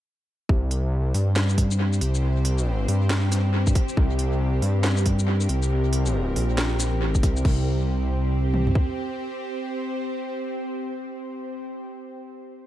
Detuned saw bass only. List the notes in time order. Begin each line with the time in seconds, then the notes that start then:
0.49 C2
1.14 G2
2.01 C2
2.88 G2
3.97 C2
4.62 G2
5.49 C2
6.36 A#1
6.96 A1
7.23 C2
7.45 C2